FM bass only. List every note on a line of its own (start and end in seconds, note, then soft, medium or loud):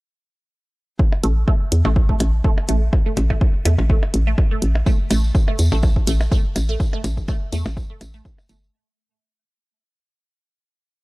1.24 1.44 A1 loud
1.72 1.83 E2 medium
1.85 2.05 A1 medium
2.20 2.41 A1 loud
2.69 2.89 A1 medium
3.17 3.38 A1 loud
3.65 3.76 E2 medium
3.78 3.98 A1 medium
4.14 4.34 A1 loud
4.62 4.83 A1 medium
5.11 5.31 A1 loud
5.59 5.70 E2 medium
5.72 5.92 A1 medium
6.07 6.28 A1 loud
6.56 6.76 A1 medium
7.04 7.25 A1 medium
7.53 7.64 E2 medium
7.66 7.86 A1 medium
8.01 8.21 A1 medium
8.49 8.70 G1 medium